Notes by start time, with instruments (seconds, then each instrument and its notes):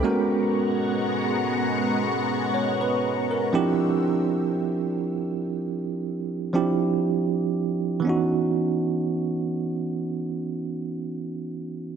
Already playing: tine electric piano A4
0.03 tine electric piano G#3 A#3 C#4 F#4 A#4, analog synth pad G#3 B3 F#5 A#5 C#6
0.10 tine electric piano B3
2.54 tine electric piano C#5
2.81 tine electric piano B4
3.31 tine electric piano A#4
3.53 tine electric piano F3 C4 D4 E4 G4
6.53 tine electric piano F3 C4 D4 E4 G4
8.00 tine electric piano E3 B3
8.05 tine electric piano C#4 D#4
8.09 tine electric piano F#4